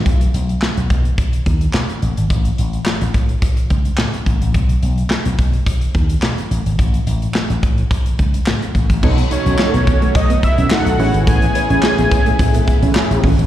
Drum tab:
CC |----------------|----------------|----------------|----------------|
HH |xxxx-xxxxxxx-xxx|xxxx-xxxxxxx-xxx|xxxx-xxxxxxx-xxx|xxxx-xxxxxxx-xxx|
CP |----x-------x---|----x-------x---|----x-------x---|----x-------x---|
SD |----o-------o---|----o-------o---|----o-------o---|----o-------o---|
BD |o-----o-o-o-----|o-----o-o-o---o-|o-----o-o-o-----|o-----o-o-o---oo|

CC |x---------------|----------------|
HH |-xxx-xxxxxxx-xox|xxxx-xxxxxxx-xox|
CP |----x-------x---|----x-------x---|
SD |----o-------o---|----o-------o---|
BD |o-----o-o-o-----|o-----o-o-o---o-|